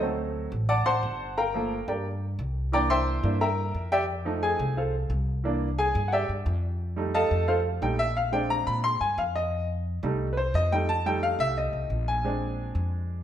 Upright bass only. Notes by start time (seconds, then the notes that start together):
Already playing: D2
0.52 A1
0.86 A1
1.03 G1
1.88 G2
2.39 C2
3.23 G2
3.75 F2
4.59 C2
5.10 C2
5.95 G2
6.29 G2
6.46 F2
7.31 F2
7.82 A#1
8.67 A#2
9.01 G2
9.18 F2
10.03 C2
10.54 F2
11.39 C2
11.73 C2
11.90 A#1
12.75 F2